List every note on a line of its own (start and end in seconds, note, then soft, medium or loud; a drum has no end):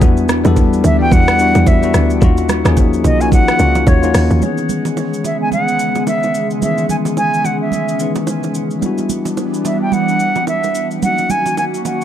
0.00 0.44 E2 loud
0.00 2.20 E3 medium
0.00 0.35 G3 medium
0.00 2.20 G3 medium
0.00 2.18 B3 medium
0.00 0.35 B3 medium
0.00 2.20 D4 medium
0.00 0.36 D4 medium
0.00 0.36 E4 medium
0.00 0.37 F#4 loud
0.00 kick loud
0.00 low conga medium
0.00 shaker medium
0.17 shaker soft
0.29 cross-stick loud
0.29 low conga medium
0.29 shaker loud
0.44 0.83 E2 loud
0.44 0.87 G3 medium
0.44 0.87 B3 medium
0.44 0.88 D4 medium
0.44 0.88 E4 medium
0.44 0.88 A4 loud
0.44 low bongo medium
0.44 shaker medium
0.56 kick medium
0.56 high bongo medium
0.56 shaker medium
0.73 shaker medium
0.84 1.11 D2 loud
0.84 1.00 E5 loud
0.84 high bongo medium
0.84 low bongo medium
0.84 shaker medium
0.99 1.32 G3 medium
0.99 1.32 B3 medium
0.99 1.33 D4 medium
0.99 1.33 E4 medium
0.99 1.33 F#4 medium
0.99 1.14 G5 loud
1.11 1.54 E2 loud
1.11 1.69 F#5 loud
1.11 kick loud
1.11 low conga medium
1.11 shaker medium
1.28 cross-stick loud
1.28 shaker medium
1.38 1.73 G3 medium
1.38 1.73 B3 medium
1.38 1.73 D4 medium
1.38 1.74 E4 medium
1.38 1.74 F#4 medium
1.38 shaker medium
1.55 1.93 E2 loud
1.55 low bongo medium
1.55 shaker medium
1.66 2.11 E5 medium
1.66 kick loud
1.66 high bongo medium
1.66 shaker medium
1.82 2.14 G3 medium
1.82 2.15 B3 medium
1.82 2.15 D4 medium
1.82 2.16 E4 medium
1.82 2.16 F#4 medium
1.82 high bongo medium
1.82 shaker medium
1.94 2.21 D2 medium
1.94 cross-stick medium
1.94 shaker loud
2.10 shaker soft
2.21 2.64 D#2 loud
2.21 4.40 D#3 medium
2.21 2.56 A#3 medium
2.21 4.40 A#3 medium
2.21 4.40 C#4 medium
2.21 2.56 C#4 medium
2.21 4.40 D#4 medium
2.21 2.56 D#4 medium
2.21 2.55 F4 medium
2.21 2.57 F#4 loud
2.21 kick loud
2.21 low conga medium
2.21 shaker medium
2.37 low bongo soft
2.37 shaker soft
2.49 cross-stick medium
2.49 low conga medium
2.49 shaker loud
2.64 3.03 D#2 medium
2.64 3.07 F3 medium
2.64 3.07 A#3 medium
2.64 3.08 C#4 medium
2.64 3.08 D#4 medium
2.64 3.09 G#4 loud
2.64 cross-stick loud
2.64 low bongo medium
2.64 shaker medium
2.77 kick loud
2.77 high bongo medium
2.77 shaker medium
2.93 shaker medium
3.04 3.46 B1 medium
3.04 3.22 D#5 medium
3.04 high bongo soft
3.04 low bongo medium
3.04 shaker medium
3.19 3.52 A#3 medium
3.19 3.53 C#4 medium
3.19 3.53 D#4 medium
3.19 3.52 F4 medium
3.19 3.54 F#4 medium
3.19 3.32 G#5 loud
3.19 shaker medium
3.32 3.89 F#5 loud
3.32 kick loud
3.32 low conga medium
3.32 shaker medium
3.48 cross-stick loud
3.48 shaker medium
3.58 3.86 C#2 loud
3.58 3.93 A#3 medium
3.58 3.94 C#4 medium
3.58 3.94 D#4 medium
3.58 3.93 F4 medium
3.58 3.94 F#4 medium
3.58 shaker medium
3.75 low bongo medium
3.75 shaker soft
3.87 4.14 D#2 loud
3.87 4.31 C#5 medium
3.87 kick loud
3.87 high bongo medium
3.87 shaker medium
4.02 4.35 A#3 medium
4.02 4.35 C#4 medium
4.02 4.36 D#4 medium
4.02 4.35 F4 medium
4.02 4.36 F#4 medium
4.02 high bongo medium
4.02 shaker medium
4.14 4.30 D#2 medium
4.14 cross-stick medium
4.14 open hi-hat medium
4.14 shaker loud
4.30 4.42 D#2 medium
4.30 shaker soft
4.39 8.78 C#3 medium
4.39 6.57 E3 medium
4.39 8.78 G#3 medium
4.39 6.58 B3 medium
4.39 6.60 B3 medium
4.39 6.59 C#4 medium
4.39 8.78 G#4 medium
4.39 low conga medium
4.39 shaker medium
4.44 6.58 D#3 medium
4.44 6.60 G#4 medium
4.58 low bongo soft
4.58 shaker soft
4.69 low conga medium
4.69 shaker medium
4.85 low bongo medium
4.85 shaker medium
4.97 high bongo medium
4.97 shaker medium
5.14 shaker medium
5.24 5.40 E5 medium
5.24 low bongo medium
5.24 shaker medium
5.41 5.52 G#5 loud
5.52 6.04 F#5 loud
5.52 low conga medium
5.52 shaker medium
5.68 shaker medium
5.79 shaker medium
5.95 low bongo medium
5.95 shaker soft
6.07 6.48 E5 medium
6.07 high bongo medium
6.07 shaker medium
6.23 high bongo medium
6.23 shaker soft
6.34 shaker medium
6.51 shaker soft
6.59 6.63 D#3 soft
6.59 7.97 B3 medium
6.59 8.80 C#4 medium
6.59 7.97 C#4 medium
6.59 6.88 E5 medium
6.59 low conga medium
6.59 shaker medium
6.64 7.97 D#3 medium
6.64 7.99 E3 medium
6.64 7.99 G#4 medium
6.78 low bongo soft
6.78 shaker soft
6.89 6.96 G#5 medium
6.89 low conga medium
6.89 shaker medium
7.05 low bongo medium
7.05 shaker medium
7.17 7.47 G#5 loud
7.17 high bongo medium
7.17 shaker medium
7.34 shaker medium
7.45 7.61 F#5 medium
7.45 low bongo medium
7.45 shaker medium
7.61 8.12 E5 medium
7.72 low conga medium
7.72 shaker medium
7.88 shaker medium
7.99 8.07 D#3 soft
7.99 8.80 B3 soft
7.99 8.83 C#4 soft
7.99 8.83 D#4 soft
7.99 8.83 B4 medium
7.99 shaker medium
8.05 8.85 E3 soft
8.15 low bongo medium
8.15 shaker soft
8.27 high bongo medium
8.27 shaker medium
8.43 high bongo medium
8.43 shaker soft
8.54 shaker medium
8.71 shaker soft
8.79 11.00 E3 medium
8.79 10.97 G3 medium
8.79 11.00 G3 medium
8.79 10.98 B3 medium
8.79 11.00 B3 medium
8.79 11.00 D4 medium
8.79 10.99 D4 medium
8.79 low conga medium
8.79 shaker medium
8.84 11.00 E4 medium
8.84 11.00 F#4 medium
8.98 low bongo soft
8.98 shaker soft
9.09 low conga medium
9.09 shaker medium
9.25 low bongo medium
9.25 shaker medium
9.37 high bongo medium
9.37 shaker medium
9.54 shaker medium
9.65 9.80 E5 medium
9.65 low bongo medium
9.65 shaker medium
9.82 9.95 G5 medium
9.92 10.48 F#5 loud
9.92 low conga medium
9.92 shaker medium
10.09 shaker medium
10.19 shaker medium
10.36 low bongo medium
10.36 shaker soft
10.47 10.88 E5 medium
10.47 high bongo medium
10.47 shaker medium
10.64 high bongo medium
10.64 shaker soft
10.75 shaker medium
10.91 shaker soft
11.00 12.04 D#3 medium
11.00 12.04 F#3 medium
11.00 12.04 A#3 medium
11.00 12.04 C#4 medium
11.00 12.04 F#4 medium
11.00 11.32 F#5 loud
11.00 low conga medium
11.00 shaker medium
11.05 12.04 D#4 medium
11.05 12.04 F#4 medium
11.18 low bongo soft
11.18 shaker soft
11.30 11.58 G#5 loud
11.30 low conga medium
11.30 shaker medium
11.46 low bongo medium
11.46 shaker medium
11.57 11.64 G#5 loud
11.57 high bongo medium
11.57 shaker medium
11.74 shaker soft
11.85 12.04 F#5 medium
11.85 low bongo medium
11.85 shaker medium